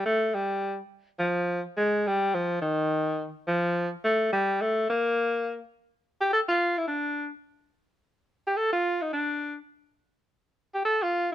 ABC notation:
X:1
M:4/4
L:1/8
Q:"Swing" 1/4=211
K:F
V:1 name="Alto saxophone"
A,2 G,3 z3 | F,3 z _A,2 G,2 | F,2 _E,4- E, z | F,3 z A,2 G,2 |
A,2 B,4- B, z | z3 G A F2 E | D3 z4 z | z3 G A F2 _E |
D3 z4 z | z3 G A F2 z |]